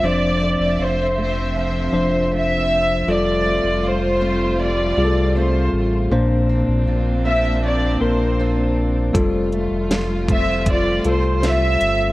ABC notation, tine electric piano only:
X:1
M:4/4
L:1/8
Q:1/4=79
K:F
V:1 name="Tine electric piano"
[F,Dc]4 z [F,Dc]3 | [G,FA]4 z [G,F_A=A]3 | [B,Dc]4 z [B,DB]3 | [G,FA]4 z [G,FA]3 |]
V:2 name="Tine electric piano" clef=bass
z8 | z8 | B,,3 z4 z | z8 |]